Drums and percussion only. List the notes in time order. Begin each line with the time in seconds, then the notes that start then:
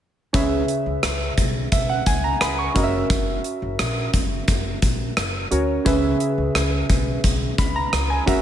0.34 kick, closed hi-hat
0.68 closed hi-hat
1.03 cross-stick, closed hi-hat
1.37 kick, closed hi-hat
1.72 kick, closed hi-hat
2.06 kick, closed hi-hat
2.41 cross-stick, closed hi-hat
2.76 kick, closed hi-hat
3.10 kick, closed hi-hat
3.44 closed hi-hat
3.79 cross-stick, closed hi-hat
4.14 kick, closed hi-hat
4.48 kick, closed hi-hat
4.82 kick, closed hi-hat
5.17 cross-stick, closed hi-hat
5.52 closed hi-hat
5.86 kick, closed hi-hat
6.20 closed hi-hat
6.55 cross-stick, closed hi-hat
6.90 kick, closed hi-hat
7.24 kick, closed hi-hat
7.58 kick, closed hi-hat
7.93 cross-stick, closed hi-hat
8.28 kick, closed hi-hat